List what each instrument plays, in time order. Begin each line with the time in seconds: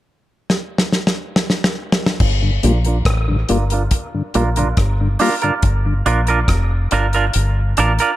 0.50 snare
0.78 snare
0.93 snare
1.07 snare
1.36 snare
1.50 snare
1.64 snare
1.92 snare
2.06 snare
2.20 fingered electric bass G1, kick, crash
2.42 tonewheel organ G2 D3
2.63 fingered electric bass A#1, tonewheel organ G3 A#3 F4, clean electric guitar D4 F4 A#4, closed hi-hat
2.85 clean electric guitar D4 F4 A#4, closed hi-hat
3.05 fingered electric bass A1, kick, cross-stick, closed hi-hat
3.28 tonewheel organ G2 D3
3.49 fingered electric bass G1, tonewheel organ G3 A#3 F4, clean electric guitar D4 F4 A#4, closed hi-hat
3.70 clean electric guitar D4 F4 A#4, closed hi-hat
3.91 kick, closed hi-hat
4.14 tonewheel organ G2 D3
4.34 fingered electric bass A#1, tonewheel organ G3 A#3 F4, clean electric guitar D4 F4 A#4, closed hi-hat
4.56 tonewheel organ G2 D3, clean electric guitar D4 F4 A#4, closed hi-hat
4.77 fingered electric bass G1, kick, cross-stick, closed hi-hat
5.01 tonewheel organ G2 D3
5.19 tonewheel organ G3 A#3 F4, clean electric guitar D4 F4 A#4, open hi-hat
5.41 tonewheel organ G2 D3, clean electric guitar D4 F4 A#4, closed hi-hat
5.62 fingered electric bass G1, kick, closed hi-hat
5.86 tonewheel organ G2 D3
6.06 fingered electric bass A#1, clean electric guitar D4 F4 A#4, closed hi-hat
6.27 clean electric guitar D4 F4 A#4, closed hi-hat
6.48 fingered electric bass F1, kick, cross-stick, closed hi-hat
6.91 fingered electric bass G1, clean electric guitar D4 F4 A#4, closed hi-hat
7.13 clean electric guitar D4 F4 A#4, closed hi-hat
7.33 fingered electric bass G1, closed hi-hat
7.77 fingered electric bass A1, clean electric guitar D4 F4 A#4, closed hi-hat
7.99 clean electric guitar D4 F4 A#4, closed hi-hat